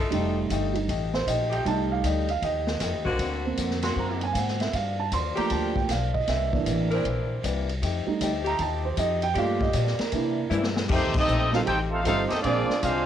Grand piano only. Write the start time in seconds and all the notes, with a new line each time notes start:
0.11 G3 A3 D#4
0.74 G3 A3 D#4
1.14 C5
1.27 D#5
1.52 G5
1.66 G3 A3 D#4 A5
1.92 F5
2.06 D5
2.30 F5
2.44 D#5
3.45 A#3 C4 F#4
3.84 C6
3.99 A#5
4.24 G#5
4.32 F5
4.38 F#5
4.61 E5
4.74 F5
4.99 A5
5.13 C6
5.37 F3 A3 A#3 A#5
5.52 A5
5.76 G5
5.91 F5
6.14 D#5
6.29 E5
6.53 E3 A#3 D4
6.93 C5
8.07 G3 A3 D#4
8.47 A#5
8.61 A5
8.85 C5
8.99 D#5
9.23 G5
9.37 A3 A#3 F4 F5
9.62 D#5
9.76 D5
10.01 A#4
10.14 A#3 D4 E4
11.54 G3 C4 D#4 F4 A4
12.07 G3 C4 D#4 F4 C5
12.45 A#3 C4 D4 F4 G#4